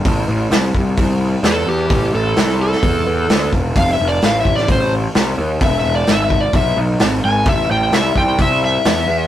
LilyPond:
<<
  \new Staff \with { instrumentName = "Electric slide guitar" } { \time 4/4 \key a \minor \tempo 4 = 130 r2. a'8 g'8~ | g'8 a'4 a'2 r8 | \tuplet 3/2 { f''8 e''8 d''8 f''8 e''8 d''8 } c''8 r4. | \tuplet 3/2 { e''8 e''8 d''8 e''8 e''8 d''8 } e''8 r4 gis''8 |
e''8 g''8 e''8 g''8 e''8 e''4. | }
  \new Staff \with { instrumentName = "Picked electric bass" } { \clef bass \time 4/4 \key a \minor a,,8 a,,8 c,8 c,8 c,4 e,8 e,8 | a,,8 a,,8 c,4 e,8 e,8 d,8 e,,8 | f,,8 f,,8 a,,8 a,,8 a,,4 c,8 dis,8 | e,,8 e,,8 gis,,4 b,,8 b,,8 gis,,8 gis,,8 |
a,,8 a,,8 c,8 c,8 c,4 e,8 e,8 | }
  \new DrumStaff \with { instrumentName = "Drums" } \drummode { \time 4/4 <hho bd>4 <hho sn>8 bd8 <hho bd>4 <hho sn>4 | <hho bd>4 <hho sn>16 sn8 sn16 <hho bd>4 <hho sn>8 bd8 | <hho bd>4 <hho sn>8 bd16 sn16 <hho bd>4 <hho sn>4 | <hho bd>4 <hho sn>8 bd8 <hho bd>4 <hho sn>4 |
<hho bd>4 <hho sn>8 bd8 <hho bd>4 <hho sn>4 | }
>>